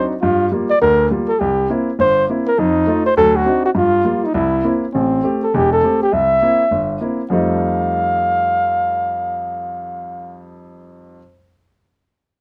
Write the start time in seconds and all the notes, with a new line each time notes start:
Already playing: F#3 C4 D4 D#4
0.21 G2 F4
0.52 G3 A#3 F4
0.70 D5
0.82 D2 D3 A#4
1.11 G3 A#3 F4
1.28 A4
1.40 C2 G4
1.70 A#3 C4 E4
1.99 G1 C5
2.29 A#3 C4 E4
2.48 A#4
2.59 F2 D#4
2.87 A3 D#4 F4
3.06 C5
3.17 D2 F#3 A4
3.36 F#4
3.46 C4 D4 D#4 F#4
3.66 F#4
3.75 G2 F4
4.05 G3 A#3 F4
4.25 D#4
4.34 C2 E4
4.64 A#3 C4 E4
4.94 A1 C4
5.24 A3 C4 G4
5.43 A4
5.54 E1 E2 G4
5.72 A4
5.83 A3 C4 G4
6.03 G4
6.13 C2 E5
6.42 A#3 C4 E4
6.71 G1
7.01 A#3 C4 E4
7.30 F2 F3 G3 A3 D#4 F5